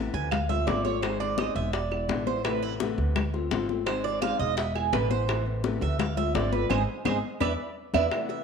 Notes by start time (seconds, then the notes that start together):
Already playing: C3 E3 A3 B3
0.00 E4
0.14 D2 G#5, high bongo, high conga
0.31 F5, muted nylon-string guitar stroke, high bongo, high conga, low conga, claves
0.49 A3 C4 F4 E5, high bongo, high conga, low conga
0.66 G#1 D3 A3 C4 F4 D5, high bongo, low bongo, high conga
0.84 A3 C4 F4 C#5, high bongo, high conga
1.02 D#3 G#3 C4 D#4 G#4 C5, high bongo, high conga, claves
1.20 D5, high bongo, high conga
1.38 D#3 G#3 C4 D#4 G#4 D#5, high bongo, high conga, claves
1.55 E1 E5, high conga
1.73 D5, muted nylon-string guitar stroke, high bongo, high conga
1.91 G#3 B3 E4, high bongo, high conga, claves
2.09 A1 B2 D3 G#3 B3 E4, high bongo, low bongo, high conga
2.27 G#3 B3 E4 C5, high bongo, high conga
2.44 C3 E3 A3 B3 E4 B4, high bongo, high conga, claves
2.62 E4, high conga
2.80 C3 E3 A3 B3 E4, high bongo, high conga
2.98 D2, high bongo, high conga
3.16 muted nylon-string guitar stroke, high bongo, high conga, low conga, claves
3.33 A3 C4 F4, high bongo, high conga
3.51 G#1 D3 A3 C4 F4, high bongo, low bongo, high conga
3.69 A3 C4 F4, high bongo, high conga
3.86 D#3 G#3 C4 D#4 G#4 C5, high bongo, high conga, claves
4.04 D5, high bongo, high conga
4.21 D#3 G#3 C4 D#4 G#4 F5, high bongo, high conga, claves
4.39 E1 D#5, high conga
4.57 E5, muted nylon-string guitar stroke, high bongo, high conga
4.75 G#3 B3 E4 G#4, high bongo, high conga, claves
4.92 A1 B2 D3 G#3 B3 E4 B4, high bongo, low bongo, high conga
5.11 G#3 B3 E4 C5, high bongo, high conga
5.28 C3 E3 A3 B3 E4, high bongo, high conga, claves
5.46 high conga
5.64 C3 E3 A3 B3 E4, high bongo, high conga
5.81 D2 E5, high bongo, high conga
5.99 F5, muted nylon-string guitar stroke, high bongo, high conga, low conga, claves
6.17 A3 C4 F4 E5, high bongo, high conga, low conga
6.35 G#1 D3 A3 C4 F4 D5, high bongo, low bongo, high conga
6.52 A3 C4 F4 B4, high bongo, high conga
6.70 G#1 G#3 C4 D#4 G#4 C5 D#5, low bongo, high conga, claves
7.05 G#1 G#3 C4 D#4 G#4 C5 D#5, low bongo, high conga, claves
7.40 E2 B3 D4 E4 B4 D5 E5, low bongo, high conga, claves
7.94 E2 B3 D4 E4 B4 D5 E5, low bongo, high conga, claves
8.11 C3 E3 A3 B3 E4, high bongo, high conga, claves
8.29 E5, high bongo, high conga